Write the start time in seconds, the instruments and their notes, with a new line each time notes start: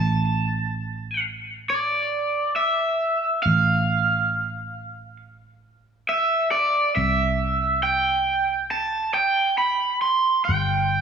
Already playing: picked electric bass A1, overdriven electric guitar A5
1.70 overdriven electric guitar D5
2.56 overdriven electric guitar E5
3.43 picked electric bass A1, overdriven electric guitar F5
6.09 overdriven electric guitar E5
6.51 overdriven electric guitar D5
6.96 picked electric bass C2, overdriven electric guitar E5
7.83 overdriven electric guitar G5
8.71 overdriven electric guitar A5
9.14 overdriven electric guitar G5
9.58 overdriven electric guitar B5
10.02 overdriven electric guitar C6
10.45 overdriven electric guitar G5
10.49 picked electric bass G1